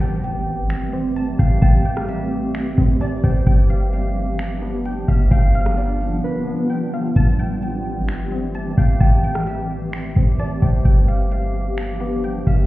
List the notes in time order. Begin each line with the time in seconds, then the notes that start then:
Already playing: A1 E3 G3 A3 C4 G4 B4 D5 A5, impact
0.01 G5, closed hi-hat
0.23 G5, closed hi-hat
0.58 G1
0.70 finger snap, closed hi-hat
0.93 C4
1.16 A5, closed hi-hat
1.39 A1 F5 G5, kick, closed hi-hat
1.62 A1 G5 A5, kick, closed hi-hat
1.85 G5, closed hi-hat
1.97 cross-stick
2.08 E5, closed hi-hat
2.55 finger snap, closed hi-hat
2.78 A1 C4, kick
3.01 D5 A5, closed hi-hat
3.24 A1 C5 G5, kick, closed hi-hat
3.47 G1 F3 B3 D4 G5, kick, closed hi-hat
3.70 F5, closed hi-hat
3.93 F5, closed hi-hat
4.39 finger snap, closed hi-hat
4.62 B3
4.85 G5, closed hi-hat
5.08 G1 E5 F5, kick, closed hi-hat
5.31 G1 F4 F5 G5, kick, closed hi-hat
5.54 F5, closed hi-hat
5.66 cross-stick
5.77 D5, closed hi-hat
6.01 open hi-hat
6.24 B4
6.47 B3
6.70 G5
6.94 F5
7.16 A1 E3 A3 C4 G4 A5, kick, closed hi-hat
7.39 G5, closed hi-hat
7.62 G5, closed hi-hat
7.97 G1
8.09 finger snap, closed hi-hat
8.32 C4
8.55 A5, closed hi-hat
8.77 A1 F5 G5, kick, closed hi-hat
9.00 A1 G5 A5, kick, closed hi-hat
9.24 G5, closed hi-hat
9.35 cross-stick
9.47 E5, closed hi-hat
9.93 finger snap, closed hi-hat
10.16 A1 C4, kick
10.39 D5 A5, closed hi-hat
10.62 A1 C5 G5, kick, closed hi-hat
10.85 G1 F3 G3 B3 D4 G5, kick, closed hi-hat
11.08 F5, closed hi-hat
11.32 F5, closed hi-hat
11.78 finger snap, closed hi-hat
12.00 B3
12.24 G5, closed hi-hat
12.47 G1 E5 F5, kick, closed hi-hat